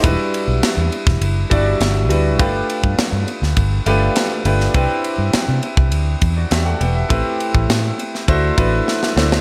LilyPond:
<<
  \new Staff \with { instrumentName = "Grand piano" } { \time 4/4 \key g \major \tempo 4 = 102 << { r1 | r1 | r2 r8. <fis' d''>16 <g' e''>16 <a' fis''>16 <b' g''>16 <g' e''>16~ | <g' e''>16 r2. r8. | } \\ { <g d' e' fis' b'>4~ <g d' e' fis' b'>16 r4 r16 <g d' e' fis' d''>8 r8 <g d' e' fis' b'>8 | <a d' f' g' b'>4~ <a d' f' g' b'>16 r4 r16 <a d' f' g' b'>8 r8 <a d' f' g' b'>8 | <c' d' e' g' b'>4~ <c' d' e' g' b'>16 r2 r8. | <a c' e' g' b'>4~ <a c' e' g' b'>16 r8. <a d' e' fis' c''>8 <a d' e' fis' b'>8 r8 <a d' e' fis' c''>8 | } >> }
  \new Staff \with { instrumentName = "Fingered electric bass" } { \clef bass \time 4/4 \key g \major e,,16 r8 b,,16 r16 e,16 r16 e,,16 fis,,8 g,,8 g,,8 d,8 | g,,8 r16 g,16 r16 g,16 r16 d,16 g,,8 g,,8 r8 g,,8 | c,16 r8 g,16 r16 c16 r16 c,16 d,8 e,8 e,8 e,,8 | a,,16 r8 a,,16 a,8 r8 d,8 a,,8 r8 d,8 | }
  \new DrumStaff \with { instrumentName = "Drums" } \drummode { \time 4/4 <hhp bd cymr>8 cymr8 <cymr sn>8 cymr16 <bd sn>16 cymr8 <bd cymr>8 <cymr sn>8 cymr8 | <bd cymr>8 cymr16 bd16 <cymr sn>8 cymr16 sn16 <bd cymr>8 cymr8 <cymr sn>8 cymr16 sn16 | <bd cymr>8 cymr8 <cymr sn>8 cymr16 bd16 cymr8 <bd cymr>8 <cymr sn>8 cymr8 | <bd cymr>8 cymr16 bd16 <cymr sn>8 cymr16 sn16 <bd cymr>8 <bd cymr>8 sn16 sn16 sn16 sn16 | }
>>